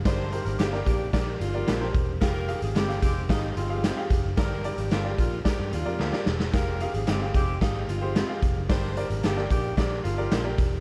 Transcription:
<<
  \new Staff \with { instrumentName = "Grand piano" } { \time 4/4 \key g \phrygian \tempo 4 = 111 <g' bes' d''>16 r16 <g' bes' c''>8 r16 <g' bes' d''>8 r16 <g' bes' d''>8 r16 <g' bes' d''>16 r16 <g' bes' c''>8 r16 | <g' aes' f''>16 r16 <g' aes' f''>8 r16 <g' aes' f''>8 r16 <g' aes' f''>8 r16 <g' aes' f''>16 r16 <g' aes' f''>8 r16 | <g' bes' d''>16 r16 <g' bes' d''>8 r16 <g' bes' d''>8 r16 <g' bes' d''>8 r16 <g' bes' d''>16 r16 <g' bes' d''>8 r16 | <g' aes' f''>16 r16 <g' aes' f''>8 r16 <g' aes' f''>8 r16 <g' aes' f''>8 r16 <g' aes' c''>16 r16 <g' aes' f''>8 r16 |
<g' bes' d''>16 r16 <g' bes' d''>8 r16 <g' bes' d''>8 r16 <g' bes' d''>8 r16 <g' bes' d''>16 r16 <g' bes' d''>8 r16 | }
  \new Staff \with { instrumentName = "Grand piano" } { \clef bass \time 4/4 \key g \phrygian g,4. r2 r8 | r1 | g,4. r2 r8 | r1 |
g,4. r2 r8 | }
  \new Staff \with { instrumentName = "Clean electric guitar" } { \time 4/4 \key g \phrygian r4 <bes d' g'>8 r4. <bes d' g'>8 r8 | r4 <aes c' g'>8 r4. <aes c' g'>8 r8 | r4 <bes d' g'>8 r4. <bes d' g'>8 r8 | r4 <aes c' g'>8 r4. <aes c' g'>8 r8 |
r4 <bes d' g'>8 r4. <bes d' g'>8 r8 | }
  \new Staff \with { instrumentName = "Saxophone section" } { \time 4/4 \key g \phrygian <d' g' c''>8. <d' g' bes'>16 <bes d' g'>8 <bes d' g'>8 <g bes d'>8 <bes d' f'>4 r8 | <f' g' bes'>8. <c' f' aes'>16 <aes c' g'>8 <aes c' g'>8 <aes c' ees'>8 <aes c' f'>4 r8 | <d' g' bes'>8. <bes d' g'>16 <bes d' f'>8 <bes d' f'>8 <bes d' g'>8 <bes d' f'>4 r8 | <f' g' bes'>8. <c' f' aes'>16 <aes c' g'>8 <aes c' g'>8 <aes c' ees'>8 <aes c' f'>4 r8 |
<d' g' c''>8. <d' g' bes'>16 <bes d' g'>8 <bes d' g'>8 <g bes d'>8 <bes d' f'>4 r8 | }
  \new Staff \with { instrumentName = "Picked electric bass" } { \clef bass \time 4/4 \key g \phrygian g,,8. aes,,16 g,,8 bes,,8 bes,,8 g,,8 bes,,8 e,,8 | f,,8. aes,,16 g,,8 f,,8 aes,,8 g,,8. r16 f,,16 ges,,16 | g,,8. aes,,16 g,,8 bes,,8 r16 g,16 ees,16 f,16 d,16 r16 e,,8 | f,,8. aes,,16 g,,8 f,,8 aes,,8 g,,8. r16 f,,16 ges,,16 |
r8. aes,,16 g,,8 bes,,8 bes,,8 g,,8 bes,,8 e,,8 | }
  \new DrumStaff \with { instrumentName = "Drums" } \drummode { \time 4/4 <hh bd sn>8 hh16 hh16 <hh sn>16 sn16 <hh bd>8 <hh bd sn>8 hh8 <hh sn>8 <hh bd>8 | <hh bd sn>8 hh16 hh16 <hh sn>16 <hh sn>16 <hh bd>8 <hh bd sn>8 hh8 <hh sn>8 <hh bd>8 | <hh bd sn>8 hh16 hh16 <hh sn>8 <hh bd>8 <hh bd sn>8 hh8 sn16 sn16 sn16 sn16 | <hh bd sn>8 hh16 hh16 <hh sn>8 <hh bd>8 <hh bd sn>8 hh8 <hh sn>8 <hh bd>8 |
<hh bd sn>8 hh16 hh16 <hh sn>16 sn16 <hh bd>8 <hh bd sn>8 hh8 <hh sn>8 <hh bd>8 | }
>>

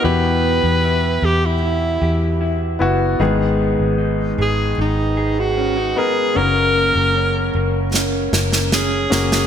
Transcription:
<<
  \new Staff \with { instrumentName = "Alto saxophone" } { \time 4/4 \key gis \minor \tempo 4 = 76 b'4. g'16 e'4. r8. | r4. gis'8 dis'8. fis'8. gis'8 | ais'2 r4 gis'4 | }
  \new Staff \with { instrumentName = "Clean electric guitar" } { \time 4/4 \key gis \minor <e g'>8 b8 e'8 g'8 e'8 g'8 e'8 b8 | <gis, gis'>8 b8 dis'8 gis'8 dis'8 gis'8 cis'16 dis'16 b8 | <fis, ais'>8 ais8 cis'8 ais'8 cis'8 ais'8 cis'8 ais8 | }
  \new Staff \with { instrumentName = "Grand piano" } { \time 4/4 \key gis \minor <b e' g'>2 r4. <b e' fis'>8 | <b dis' gis'>2 r4. <b dis' ais'>8 | <cis' fis' ais'>2 r4. <cis' fis' ais'>8 | }
  \new Staff \with { instrumentName = "Grand piano" } { \clef bass \time 4/4 \key gis \minor b,4. r2 r8 | <gis, dis>4. r2 r8 | cis4. r2 r8 | }
  \new Staff \with { instrumentName = "Fingered electric bass" } { \clef bass \time 4/4 \key gis \minor e,8. e,8. e,4 e,4 fis,,8 | gis,,8. gis,,8. gis,,8 gis,,4. r8 | fis,,8. fis,,8. fis,,4 fis,,4 fis,,8 | }
  \new DrumStaff \with { instrumentName = "Drums" } \drummode { \time 4/4 r4 r4 r4 r4 | r4 r4 r4 r4 | r4 r4 sn8 sn16 sn16 sn8 sn16 sn16 | }
>>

